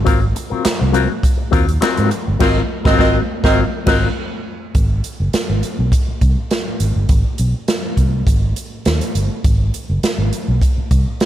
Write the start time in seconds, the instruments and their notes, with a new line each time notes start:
0.05 fingered electric bass G#1, clean electric guitar F#3 C4 F4 A#4, kick, closed hi-hat
0.21 muted clean electric guitar stroke
0.36 muted clean electric guitar stroke, closed hi-hat
0.50 clean electric guitar F#3 C4 F4 A#4, muted fingered electric bass stroke
0.65 muted clean electric guitar stroke, muted fingered electric bass stroke, snare, clap, closed hi-hat
0.80 fingered electric bass C2, muted clean electric guitar stroke
0.92 clean electric guitar F#3 C4 F4 A#4, closed hi-hat
1.10 muted clean electric guitar stroke
1.23 kick, closed hi-hat
1.38 muted clean electric guitar stroke
1.51 fingered electric bass D#2, clean electric guitar F#3 C4 F4 A#4, kick, closed hi-hat
1.67 muted clean electric guitar stroke, closed hi-hat
1.81 clean electric guitar F#3 C4 F4 A#4, snare, clap, closed hi-hat
1.97 fingered electric bass G#2, closed hi-hat
2.11 muted clean electric guitar stroke, closed hi-hat
2.26 fingered electric bass G1, muted clean electric guitar stroke
2.39 fingered electric bass G#1, clean electric guitar F#3 C4 F4 A#4, horn section C4 A#4 D#5, kick, snare, crash
2.84 fingered electric bass G#1, clean electric guitar F#3 C4 F4 A#4, horn section C4 A#4 D#5, kick, snare
2.98 fingered electric bass G#1, clean electric guitar F#3 C4 F4 A#4, horn section C4 A#4 D#5, kick, snare
3.43 fingered electric bass G#1, clean electric guitar F#3 C4 F4 A#4, horn section C4 A#4 D#5, kick, snare
3.86 fingered electric bass G#1, clean electric guitar F#3 C4 F4 A#4, horn section C4 A#4 D#5, kick, snare, crash
4.75 fingered electric bass G#1, kick, closed hi-hat
5.04 closed hi-hat
5.20 fingered electric bass F#1
5.33 muted fingered electric bass stroke, snare, closed hi-hat
5.50 fingered electric bass G#1
5.63 closed hi-hat
5.79 fingered electric bass B1
5.92 kick, closed hi-hat
6.08 muted fingered electric bass stroke
6.21 fingered electric bass C2, kick, closed hi-hat
6.51 snare, closed hi-hat
6.80 fingered electric bass G#1, closed hi-hat
6.96 fingered electric bass G1
7.09 fingered electric bass G#1, kick, closed hi-hat
7.38 fingered electric bass B1, closed hi-hat
7.68 snare, closed hi-hat
7.97 fingered electric bass C2, kick, closed hi-hat
8.27 fingered electric bass G#1, kick, closed hi-hat
8.56 closed hi-hat
8.85 fingered electric bass D#2, snare, closed hi-hat
9.01 closed hi-hat
9.15 fingered electric bass G1, closed hi-hat
9.44 fingered electric bass G#1, kick, closed hi-hat
9.74 closed hi-hat
9.90 fingered electric bass F#1
10.03 muted fingered electric bass stroke, snare, closed hi-hat
10.18 fingered electric bass G#1
10.33 closed hi-hat
10.48 fingered electric bass B1
10.62 kick, closed hi-hat
10.78 muted fingered electric bass stroke
10.91 fingered electric bass C2, kick, closed hi-hat
11.20 snare, closed hi-hat